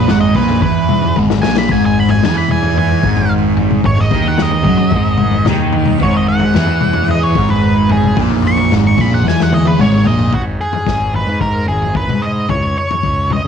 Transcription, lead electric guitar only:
0.09 F#5
0.21 D#5
0.36 B4
0.62 B4
1.42 G#5
1.58 B5
1.72 G#5
1.86 G#5
1.99 B5
2.11 G#5
2.25 G#5
2.38 B5
2.52 G#5
2.79 G#5
3.86 C#5
4.00 D#5
4.28 F#5
4.42 D#5
6.03 C#5
6.17 D#5
6.29 F#5
7.11 D#5
7.23 C#5
7.50 B4
7.92 G#4
8.47 C#6
8.87 C#6
9.01 B5
9.14 F#5
9.28 G#5
9.43 F#5
9.54 D#5
9.67 B4
9.81 C#5
10.07 D#5
10.34 F#4
10.61 G#4
11.16 B4
11.41 A#4
11.68 G#4
11.97 B4
12.22 D#5
12.50 C#5
12.78 C#5
13.33 D#5

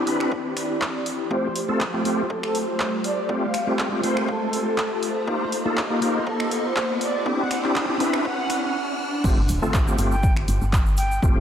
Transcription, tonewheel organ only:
0.06 C4 D4 E4 B4
1.30 A3 C4 F4 G4
1.68 A3 C4 F4 A4
1.93 A3 C4 F4 G4
2.05 A3 C4 F4 G4
3.29 A3 C4 F4 G4
3.67 A3 C4 F4 G4
3.92 A3 C4 F4 G4
4.03 A3 C4 F4 C5
5.27 A#3 D#4 F4 G4
5.65 A#3 D#4 F4 A4
5.90 A#3 D#4 F4 G4
6.02 A#3 D#4 F4 G4
7.25 C4 D4 E4 G4
7.64 C4 D4 E4 G4
7.88 C4 D4 E4 G4
8.00 C4 D4 E4 B4
9.24 A3 C4 F4 G4
9.62 A3 C4 F4 A4
9.87 A3 C4 F4 G4
9.98 A3 C4 F4 G4
11.22 A3 C4 F4 G4

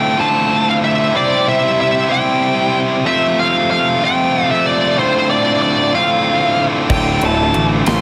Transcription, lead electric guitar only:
Already playing: G5
0.20 A5
0.69 F5
0.84 E5
1.16 D5
1.49 E5
1.81 E5
2.12 G5
3.07 E5
3.40 F5
3.71 F5
4.05 G5
4.51 E5
4.66 D5
4.99 C5
5.30 D5
5.62 D5
5.95 F5
6.91 G5
7.25 A5
7.54 A5
7.88 C6

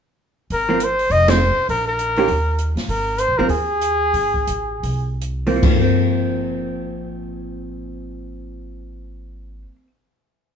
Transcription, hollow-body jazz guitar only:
0.69 F3 A#3 C4
1.28 D#3 A3 C4
2.18 D#3 A#3 C#4 G4
3.39 F3 A#3 C4
5.47 F3 A#3 C4
5.56 F3
5.70 A#3
5.81 C4

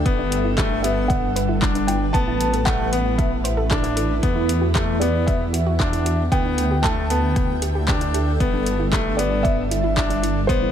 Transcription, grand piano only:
0.06 B3
0.58 A3
0.84 B3
1.62 D4
2.14 B3
2.66 A3
2.93 B3
3.71 D4
4.23 B3
4.75 A3
5.01 B3
5.80 D4
6.32 B3
6.84 A3
7.10 B3
7.88 D4
8.40 B3
8.93 A3
9.19 B3
9.97 D4
10.49 B3

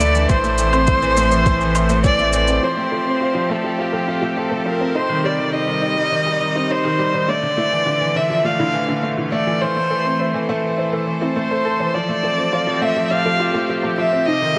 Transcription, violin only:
Already playing: D5
0.30 C5
2.05 D5
2.35 D5
2.64 C5
3.51 A4
3.80 G4
4.39 A4
4.67 A#4
4.96 C5
5.25 D5
5.54 D#5
6.71 C5
7.29 D5
8.16 E5
8.45 F5
9.32 D5
9.61 C5
11.35 C5
11.94 D5
12.82 E5
13.11 F5
13.98 E5
14.26 D#5

